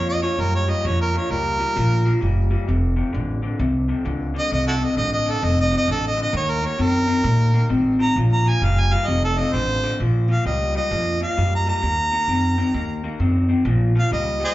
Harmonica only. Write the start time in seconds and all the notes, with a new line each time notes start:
0.09 D#5
0.22 C#5
0.41 A#4
0.55 C#5
0.70 D#5
0.86 C#5
1.01 A#4
1.17 C#5
1.31 A#4
4.39 D#5
4.53 D#5
4.67 E4 F#4 A4
4.84 D#5
4.97 D#5
5.13 D#5
5.30 A4
5.44 D#5
5.60 D#5
5.77 D#5
5.91 A4
6.07 D#5
6.22 D#5
6.36 C#5
6.50 A#4
6.65 C#5
6.82 A#4
8.02 A#5
8.33 A#5
8.48 G#5
8.64 F5
8.80 G#5
8.93 F5
9.07 D#5
9.24 A4
9.38 D#5
9.53 C5
10.31 F5
10.46 D#5
10.76 D#5
11.22 F5
11.55 A#5
11.69 A#5
13.99 F5
14.13 D#5
14.45 G#4 C5 D#5